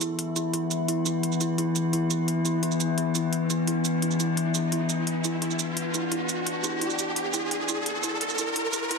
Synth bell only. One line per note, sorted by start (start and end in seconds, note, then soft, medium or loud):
0.01 0.08 E4 medium
0.36 0.52 E4 medium
0.54 0.60 E4 medium
0.88 1.05 E4 medium
1.06 1.13 E4 medium
1.41 1.57 E4 medium
1.58 1.65 E4 medium
1.93 2.09 E4 medium
2.11 2.17 E4 medium
2.45 2.62 E4 medium
2.63 2.70 E4 medium
2.98 3.14 E4 medium
3.15 3.22 E4 medium
3.50 3.66 E4 medium
3.67 3.74 E4 medium
4.02 4.19 E4 medium
4.20 4.27 E4 medium
4.55 4.71 E4 medium
4.72 4.79 E4 medium
5.24 5.41 E4 medium
5.42 5.49 E4 medium
5.94 6.10 E4 medium
6.12 6.19 E4 medium
6.64 6.80 E4 medium
6.81 6.88 E4 medium
7.34 7.50 E4 medium
7.69 7.85 E4 medium
8.03 8.20 E4 medium
8.38 8.54 E4 medium
8.56 8.72 E4 medium
8.73 8.89 E4 medium
8.91 8.98 E4 medium